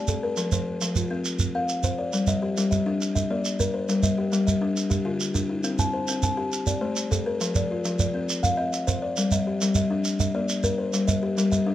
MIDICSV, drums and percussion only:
0, 0, Header, 1, 2, 480
1, 0, Start_track
1, 0, Tempo, 293112
1, 616, Time_signature, 12, 3, 24, 8
1, 19235, End_track
2, 0, Start_track
2, 0, Title_t, "Shekere"
2, 128, Note_on_c, 9, 82, 68
2, 292, Note_off_c, 9, 82, 0
2, 603, Note_on_c, 9, 82, 52
2, 767, Note_off_c, 9, 82, 0
2, 850, Note_on_c, 9, 82, 68
2, 1014, Note_off_c, 9, 82, 0
2, 1331, Note_on_c, 9, 82, 59
2, 1495, Note_off_c, 9, 82, 0
2, 1564, Note_on_c, 9, 82, 72
2, 1728, Note_off_c, 9, 82, 0
2, 2046, Note_on_c, 9, 82, 56
2, 2210, Note_off_c, 9, 82, 0
2, 2279, Note_on_c, 9, 82, 70
2, 2443, Note_off_c, 9, 82, 0
2, 2762, Note_on_c, 9, 82, 55
2, 2925, Note_off_c, 9, 82, 0
2, 3004, Note_on_c, 9, 82, 69
2, 3168, Note_off_c, 9, 82, 0
2, 3487, Note_on_c, 9, 82, 44
2, 3650, Note_off_c, 9, 82, 0
2, 3718, Note_on_c, 9, 82, 61
2, 3882, Note_off_c, 9, 82, 0
2, 4212, Note_on_c, 9, 82, 54
2, 4376, Note_off_c, 9, 82, 0
2, 4453, Note_on_c, 9, 82, 65
2, 4617, Note_off_c, 9, 82, 0
2, 4934, Note_on_c, 9, 82, 51
2, 5098, Note_off_c, 9, 82, 0
2, 5173, Note_on_c, 9, 82, 71
2, 5337, Note_off_c, 9, 82, 0
2, 5652, Note_on_c, 9, 82, 56
2, 5816, Note_off_c, 9, 82, 0
2, 5894, Note_on_c, 9, 82, 74
2, 6058, Note_off_c, 9, 82, 0
2, 6366, Note_on_c, 9, 82, 59
2, 6530, Note_off_c, 9, 82, 0
2, 6598, Note_on_c, 9, 82, 80
2, 6761, Note_off_c, 9, 82, 0
2, 7086, Note_on_c, 9, 82, 56
2, 7249, Note_off_c, 9, 82, 0
2, 7334, Note_on_c, 9, 82, 78
2, 7498, Note_off_c, 9, 82, 0
2, 7806, Note_on_c, 9, 82, 56
2, 7970, Note_off_c, 9, 82, 0
2, 8038, Note_on_c, 9, 82, 77
2, 8202, Note_off_c, 9, 82, 0
2, 8522, Note_on_c, 9, 82, 55
2, 8686, Note_off_c, 9, 82, 0
2, 8760, Note_on_c, 9, 82, 73
2, 8924, Note_off_c, 9, 82, 0
2, 9230, Note_on_c, 9, 82, 57
2, 9394, Note_off_c, 9, 82, 0
2, 9479, Note_on_c, 9, 82, 77
2, 9643, Note_off_c, 9, 82, 0
2, 9954, Note_on_c, 9, 82, 63
2, 10117, Note_off_c, 9, 82, 0
2, 10198, Note_on_c, 9, 82, 72
2, 10362, Note_off_c, 9, 82, 0
2, 10685, Note_on_c, 9, 82, 62
2, 10849, Note_off_c, 9, 82, 0
2, 10918, Note_on_c, 9, 82, 81
2, 11081, Note_off_c, 9, 82, 0
2, 11399, Note_on_c, 9, 82, 61
2, 11563, Note_off_c, 9, 82, 0
2, 11656, Note_on_c, 9, 82, 78
2, 11819, Note_off_c, 9, 82, 0
2, 12131, Note_on_c, 9, 82, 64
2, 12295, Note_off_c, 9, 82, 0
2, 12368, Note_on_c, 9, 82, 84
2, 12532, Note_off_c, 9, 82, 0
2, 12849, Note_on_c, 9, 82, 64
2, 13012, Note_off_c, 9, 82, 0
2, 13089, Note_on_c, 9, 82, 82
2, 13252, Note_off_c, 9, 82, 0
2, 13581, Note_on_c, 9, 82, 62
2, 13745, Note_off_c, 9, 82, 0
2, 13814, Note_on_c, 9, 82, 82
2, 13978, Note_off_c, 9, 82, 0
2, 14296, Note_on_c, 9, 82, 65
2, 14460, Note_off_c, 9, 82, 0
2, 14542, Note_on_c, 9, 82, 79
2, 14705, Note_off_c, 9, 82, 0
2, 15014, Note_on_c, 9, 82, 61
2, 15178, Note_off_c, 9, 82, 0
2, 15253, Note_on_c, 9, 82, 84
2, 15417, Note_off_c, 9, 82, 0
2, 15741, Note_on_c, 9, 82, 64
2, 15905, Note_off_c, 9, 82, 0
2, 15966, Note_on_c, 9, 82, 79
2, 16129, Note_off_c, 9, 82, 0
2, 16451, Note_on_c, 9, 82, 64
2, 16615, Note_off_c, 9, 82, 0
2, 16698, Note_on_c, 9, 82, 79
2, 16862, Note_off_c, 9, 82, 0
2, 17177, Note_on_c, 9, 82, 62
2, 17341, Note_off_c, 9, 82, 0
2, 17417, Note_on_c, 9, 82, 71
2, 17581, Note_off_c, 9, 82, 0
2, 17903, Note_on_c, 9, 82, 57
2, 18067, Note_off_c, 9, 82, 0
2, 18148, Note_on_c, 9, 82, 75
2, 18312, Note_off_c, 9, 82, 0
2, 18632, Note_on_c, 9, 82, 60
2, 18796, Note_off_c, 9, 82, 0
2, 18868, Note_on_c, 9, 82, 67
2, 19031, Note_off_c, 9, 82, 0
2, 19235, End_track
0, 0, End_of_file